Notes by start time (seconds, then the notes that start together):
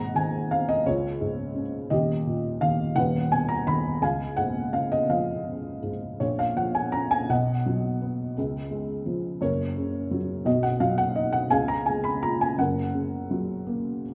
Already playing: G#1 G#2 F#5 A#5
0.14 D#3 G#5
0.51 C4 F5
0.69 D#5
0.86 C#2 F4 C#5
1.21 G#2
1.55 C#3
1.90 D#1 D#2 G4 D#5
2.26 A#2
2.61 D#3 F5
2.96 D#1 D#2 B4 F#5
3.31 B2 G#5
3.49 A#5
3.67 D#3 B5
4.01 C#2 F5 G#5
4.37 G#2 F#5
4.73 C#3 F5
4.92 D#5
5.09 F3 F5
5.82 G#2
6.20 A#1 A#2 F4 C#5
6.39 F5
6.56 F3 F#5
6.75 G#5
6.92 C#4 A#5
7.11 G#5
7.29 B1 B2 D#5 F#5
7.66 F#3
8.02 B3
8.38 C#2 C#3
8.71 G#3
9.06 F3
9.41 F#1 F#2 A#4 C#5
9.77 C#3
10.11 F#3
10.45 B1 B2 F#4 D#5
10.63 F#5
10.80 F#3 F5
10.98 F#5
11.16 D#4 D#5
11.32 F#5
11.50 C#2 C#3 F5 G#5
11.68 A#5
11.86 G#3 G#5
12.04 B5
12.22 F4 A#5
12.41 G#5
12.58 F#1 F#2 A#4 F#5
12.94 C#3
13.31 F#3
13.67 A#3